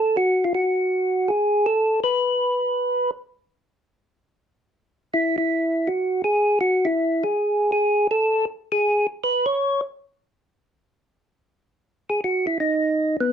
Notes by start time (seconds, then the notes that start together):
Already playing: A4
0.17 F#4
0.44 F4
0.55 F#4
1.28 G#4
1.66 A4
2.04 B4
5.14 E4
5.38 E4
5.87 F#4
6.24 G#4
6.61 F#4
6.85 E4
7.24 G#4
7.72 G#4
8.11 A4
8.72 G#4
9.24 B4
9.46 C#5
12.10 G#4
12.24 F#4
12.47 E4
12.60 D#4
13.21 B3